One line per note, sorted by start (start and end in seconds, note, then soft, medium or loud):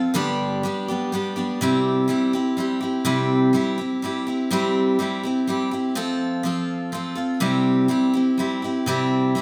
0.00 0.15 C4 soft
0.00 0.16 F4 soft
0.00 0.15 A4 medium
0.14 0.63 G2 medium
0.14 0.63 D3 medium
0.14 0.63 G3 medium
0.14 0.64 B3 medium
0.14 0.64 D4 loud
0.14 0.66 G4 medium
0.63 0.88 G3 medium
0.63 0.89 B3 medium
0.63 0.88 D4 medium
0.63 0.87 G4 medium
0.88 1.11 G3 soft
0.88 1.12 B3 soft
0.88 1.13 D4 medium
0.88 1.13 G4 medium
1.12 1.37 G3 medium
1.12 1.37 B3 medium
1.12 1.35 D4 medium
1.12 1.35 G4 medium
1.36 1.61 G3 soft
1.36 1.61 B3 soft
1.36 1.61 D4 soft
1.36 1.60 G4 medium
1.61 2.09 C3 medium
1.61 2.06 G3 medium
1.61 2.08 C4 medium
1.61 2.08 E4 loud
1.61 2.09 G4 medium
2.08 2.33 G3 medium
2.08 2.33 C4 medium
2.08 2.34 E4 medium
2.08 2.32 G4 medium
2.33 2.57 C4 soft
2.33 2.57 E4 medium
2.33 2.58 G4 medium
2.57 2.81 G3 medium
2.57 2.82 C4 medium
2.57 2.81 E4 medium
2.57 2.79 G4 medium
2.81 3.04 C4 soft
2.81 3.05 E4 soft
2.81 3.05 G4 soft
3.05 3.54 C3 medium
3.05 3.52 G3 medium
3.05 3.54 C4 medium
3.05 3.54 E4 medium
3.05 3.54 G4 medium
3.53 3.78 G3 medium
3.53 3.79 C4 medium
3.53 3.78 E4 medium
3.53 3.77 G4 medium
3.78 4.02 C4 soft
3.78 4.03 E4 soft
3.78 4.02 G4 medium
4.02 4.27 G3 medium
4.02 4.27 C4 medium
4.02 4.27 E4 medium
4.02 4.25 G4 medium
4.27 4.50 C4 soft
4.27 4.51 E4 soft
4.27 4.51 G4 medium
4.51 4.99 C3 medium
4.51 4.98 G3 medium
4.51 4.99 C4 medium
4.51 4.99 E4 medium
4.51 5.01 G4 medium
4.99 5.23 G3 medium
4.99 5.24 C4 medium
4.99 5.24 E4 medium
4.99 5.22 G4 medium
5.23 5.47 C4 soft
5.23 5.48 E4 soft
5.23 5.48 G4 soft
5.47 5.72 G3 medium
5.47 5.72 C4 medium
5.47 5.72 E4 medium
5.47 5.70 G4 medium
5.71 5.95 C4 soft
5.71 5.96 E4 soft
5.71 5.96 G4 soft
5.95 6.42 F3 medium
5.95 6.44 C4 medium
5.95 6.45 F4 medium
5.95 6.45 A4 loud
6.43 6.91 F3 medium
6.43 6.92 C4 medium
6.43 6.93 F4 medium
6.43 6.94 A4 medium
6.92 7.17 F3 medium
6.92 7.17 C4 medium
6.92 7.16 F4 medium
6.92 7.14 A4 medium
7.15 7.40 C4 soft
7.15 7.41 F4 soft
7.15 7.41 A4 medium
7.40 7.89 C3 medium
7.40 7.88 G3 medium
7.40 7.88 C4 medium
7.40 7.89 E4 medium
7.40 7.91 G4 medium
7.88 8.13 G3 medium
7.88 8.14 C4 medium
7.88 8.14 E4 medium
7.88 8.12 G4 medium
8.13 8.38 C4 soft
8.13 8.39 E4 soft
8.13 8.38 G4 medium
8.38 8.62 G3 medium
8.38 8.63 C4 medium
8.38 8.63 E4 medium
8.38 8.61 G4 medium
8.62 8.86 C4 soft
8.62 8.87 E4 soft
8.62 8.86 G4 soft
8.86 9.35 C3 medium
8.86 9.35 G3 medium
8.86 9.35 C4 medium
8.86 9.36 E4 loud
8.86 9.38 G4 medium
9.35 9.42 G3 medium
9.35 9.42 C4 medium
9.35 9.42 E4 medium
9.35 9.42 G4 medium